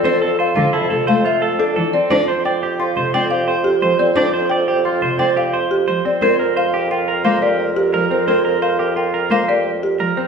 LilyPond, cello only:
\new Staff \with { instrumentName = "Cello" } { \time 6/4 \key c \mixolydian \tempo 4 = 175 c'8 r4 d8 r8 c8 a8 r4. e8 r8 | d'8 r2 c8 c'8 r4. f8 r8 | d'8 r2 c8 c'8 r4. f8 r8 | c'8 r2 r8 bes8 r4. f8 r8 |
c'8 r2 r8 bes8 r4. f8 r8 | }